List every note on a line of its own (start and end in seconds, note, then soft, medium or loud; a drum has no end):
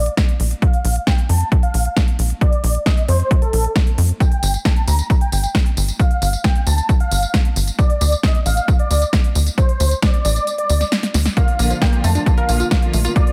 0.06 closed hi-hat medium
0.17 kick loud
0.17 snare loud
0.17 closed hi-hat medium
0.29 closed hi-hat medium
0.40 0.54 A#1 medium
0.40 open hi-hat loud
0.51 closed hi-hat medium
0.62 0.94 F5 medium
0.62 kick loud
0.62 closed hi-hat medium
0.73 closed hi-hat soft
0.85 0.99 A#1 loud
0.85 open hi-hat loud
0.96 closed hi-hat soft
1.07 1.23 G5 medium
1.07 kick loud
1.07 snare loud
1.07 closed hi-hat medium
1.18 closed hi-hat soft
1.29 1.43 F2 loud
1.29 1.53 A5 medium
1.29 open hi-hat loud
1.41 closed hi-hat soft
1.52 kick loud
1.52 closed hi-hat medium
1.63 1.87 F5 medium
1.63 closed hi-hat soft
1.74 1.88 A#1 medium
1.74 open hi-hat loud
1.85 closed hi-hat soft
1.97 kick loud
1.97 snare loud
1.97 closed hi-hat medium
2.08 closed hi-hat medium
2.19 2.33 A#1 medium
2.19 open hi-hat loud
2.30 closed hi-hat medium
2.41 2.73 D5 loud
2.41 kick loud
2.41 closed hi-hat medium
2.53 closed hi-hat soft
2.64 2.78 A#1 loud
2.64 open hi-hat loud
2.75 closed hi-hat soft
2.86 3.02 D#5 medium
2.86 kick loud
2.86 snare loud
2.86 closed hi-hat medium
2.97 closed hi-hat soft
3.08 3.22 F2 loud
3.08 3.32 C5 loud
3.08 open hi-hat loud
3.20 closed hi-hat soft
3.31 kick loud
3.31 closed hi-hat medium
3.42 3.66 A4 medium
3.42 closed hi-hat soft
3.53 3.67 A#1 medium
3.53 open hi-hat loud
3.65 closed hi-hat soft
3.76 kick loud
3.76 snare loud
3.76 closed hi-hat medium
3.87 closed hi-hat medium
3.98 4.12 F2 loud
3.98 open hi-hat loud
4.09 closed hi-hat medium
4.20 4.52 G5 loud
4.20 kick loud
4.20 closed hi-hat medium
4.20 tambourine soft
4.32 closed hi-hat medium
4.43 4.57 G1 loud
4.43 open hi-hat loud
4.43 tambourine medium
4.54 closed hi-hat soft
4.54 tambourine soft
4.65 4.81 A5 medium
4.65 kick loud
4.65 snare loud
4.65 closed hi-hat medium
4.65 tambourine soft
4.76 closed hi-hat soft
4.88 5.02 D2 loud
4.88 5.12 A#5 medium
4.88 open hi-hat medium
4.88 tambourine medium
4.99 closed hi-hat soft
4.99 tambourine soft
5.10 kick loud
5.10 closed hi-hat medium
5.10 tambourine soft
5.21 5.45 G5 medium
5.21 closed hi-hat soft
5.32 5.46 G1 medium
5.32 open hi-hat loud
5.32 tambourine medium
5.44 closed hi-hat soft
5.44 tambourine soft
5.55 kick loud
5.55 snare loud
5.55 closed hi-hat medium
5.55 tambourine soft
5.66 closed hi-hat medium
5.77 5.91 G1 medium
5.77 open hi-hat loud
5.77 tambourine medium
5.88 closed hi-hat medium
5.88 tambourine soft
6.00 6.32 F5 medium
6.00 kick loud
6.00 closed hi-hat medium
6.00 tambourine soft
6.11 closed hi-hat medium
6.22 6.36 G1 loud
6.22 open hi-hat loud
6.22 tambourine medium
6.33 closed hi-hat soft
6.33 tambourine soft
6.44 6.60 G5 medium
6.44 kick loud
6.44 snare loud
6.44 closed hi-hat medium
6.44 tambourine soft
6.55 closed hi-hat medium
6.67 6.81 D2 loud
6.67 6.91 A5 loud
6.67 open hi-hat loud
6.67 tambourine medium
6.78 closed hi-hat soft
6.78 tambourine soft
6.89 kick loud
6.89 closed hi-hat medium
6.89 tambourine soft
7.00 7.24 F5 medium
7.00 closed hi-hat medium
7.11 7.25 G1 medium
7.11 open hi-hat loud
7.11 tambourine medium
7.23 closed hi-hat soft
7.23 tambourine soft
7.34 kick loud
7.34 snare loud
7.34 closed hi-hat medium
7.45 closed hi-hat medium
7.56 7.70 G1 medium
7.56 open hi-hat loud
7.56 tambourine medium
7.67 closed hi-hat medium
7.67 tambourine soft
7.79 8.11 D5 loud
7.79 kick loud
7.79 closed hi-hat medium
7.79 tambourine soft
7.90 closed hi-hat medium
8.01 8.15 D2 loud
8.01 open hi-hat loud
8.01 tambourine medium
8.12 closed hi-hat medium
8.12 tambourine soft
8.23 8.39 D#5 medium
8.23 kick loud
8.23 snare loud
8.23 closed hi-hat medium
8.23 tambourine soft
8.35 closed hi-hat soft
8.46 8.60 A1 loud
8.46 8.70 F5 loud
8.46 open hi-hat medium
8.46 tambourine medium
8.57 closed hi-hat soft
8.57 tambourine soft
8.68 kick loud
8.68 closed hi-hat medium
8.68 tambourine soft
8.79 9.03 D5 medium
8.79 closed hi-hat soft
8.91 9.05 D2 medium
8.91 open hi-hat loud
8.91 tambourine medium
9.02 closed hi-hat medium
9.02 tambourine soft
9.13 kick loud
9.13 snare loud
9.13 closed hi-hat medium
9.13 tambourine soft
9.24 closed hi-hat medium
9.35 9.49 D2 medium
9.35 open hi-hat loud
9.35 tambourine medium
9.47 closed hi-hat medium
9.47 tambourine soft
9.58 9.90 C5 medium
9.58 kick loud
9.58 closed hi-hat medium
9.58 tambourine soft
9.69 closed hi-hat medium
9.80 9.94 D2 loud
9.80 open hi-hat loud
9.80 tambourine medium
9.91 closed hi-hat soft
9.91 tambourine soft
10.02 10.18 D5 medium
10.02 kick loud
10.02 snare loud
10.02 closed hi-hat medium
10.02 tambourine soft
10.14 closed hi-hat medium
10.25 10.39 A1 loud
10.25 10.49 D5 loud
10.25 open hi-hat loud
10.25 tambourine medium
10.36 closed hi-hat medium
10.36 tambourine soft
10.47 closed hi-hat medium
10.47 tambourine soft
10.58 10.82 D5 medium
10.58 closed hi-hat medium
10.70 10.84 D2 medium
10.70 open hi-hat loud
10.70 tambourine medium
10.81 snare soft
10.81 closed hi-hat medium
10.81 tambourine soft
10.92 snare loud
10.92 closed hi-hat medium
10.92 tambourine soft
11.03 snare medium
11.03 closed hi-hat medium
11.14 11.28 D2 medium
11.14 snare medium
11.14 open hi-hat loud
11.14 tambourine medium
11.26 snare medium
11.26 closed hi-hat medium
11.26 tambourine soft
11.37 11.53 D3 medium
11.37 11.52 F3 medium
11.37 11.47 A#3 loud
11.37 11.52 A#3 medium
11.37 11.52 F4 medium
11.37 11.69 F5 loud
11.37 kick loud
11.37 closed hi-hat medium
11.37 tambourine soft
11.48 closed hi-hat medium
11.59 11.73 A#1 medium
11.59 11.75 D3 medium
11.59 11.75 F3 medium
11.59 11.75 A#3 medium
11.59 11.66 A#3 medium
11.59 11.75 F4 medium
11.59 open hi-hat loud
11.59 tambourine medium
11.70 11.75 F3 medium
11.70 closed hi-hat medium
11.70 tambourine soft
11.82 11.89 D3 medium
11.82 11.92 A#3 loud
11.82 11.89 A#3 medium
11.82 11.98 G5 medium
11.82 kick loud
11.82 snare loud
11.82 closed hi-hat medium
11.93 12.09 D3 medium
11.93 12.09 F3 medium
11.93 12.00 A#3 medium
11.93 12.09 A#3 medium
11.93 12.09 F4 medium
11.93 closed hi-hat medium
12.04 12.18 F2 loud
12.04 12.11 A3 medium
12.04 12.28 A5 loud
12.04 open hi-hat loud
12.04 tambourine medium
12.15 12.23 D3 medium
12.15 12.23 F3 medium
12.15 12.23 A#3 medium
12.15 12.22 D4 medium
12.15 12.23 F4 medium
12.15 closed hi-hat soft
12.15 tambourine soft
12.26 12.42 D3 medium
12.26 12.42 F3 medium
12.26 12.37 A#3 loud
12.26 12.42 A#3 medium
12.26 12.42 F4 medium
12.26 kick loud
12.26 closed hi-hat medium
12.26 tambourine soft
12.38 12.48 A#4 loud
12.38 12.62 F5 medium
12.38 closed hi-hat medium
12.49 12.63 A#1 medium
12.49 12.64 D3 medium
12.49 12.64 F3 medium
12.49 12.64 A#3 medium
12.49 12.56 A#3 medium
12.49 12.64 F4 medium
12.49 open hi-hat loud
12.49 tambourine medium
12.60 12.67 F4 medium
12.60 closed hi-hat soft
12.60 tambourine soft
12.71 12.81 A#3 loud
12.71 kick loud
12.71 snare loud
12.71 closed hi-hat medium
12.82 12.98 D3 medium
12.82 12.98 F3 medium
12.82 12.90 A#3 medium
12.82 12.98 A#3 medium
12.82 12.98 F4 medium
12.82 closed hi-hat medium
12.93 13.08 A#1 medium
12.93 13.01 A3 medium
12.93 open hi-hat loud
12.93 tambourine medium
13.05 13.13 D3 medium
13.05 13.13 F3 medium
13.05 13.13 A#3 medium
13.05 13.12 F4 loud
13.05 13.13 F4 medium
13.05 closed hi-hat medium
13.05 tambourine soft
13.16 13.32 D3 medium
13.16 13.32 F3 medium
13.16 13.27 A#3 loud
13.16 13.32 A#3 medium
13.16 13.32 F4 medium
13.16 13.32 D5 loud
13.16 kick loud
13.16 closed hi-hat medium
13.27 closed hi-hat medium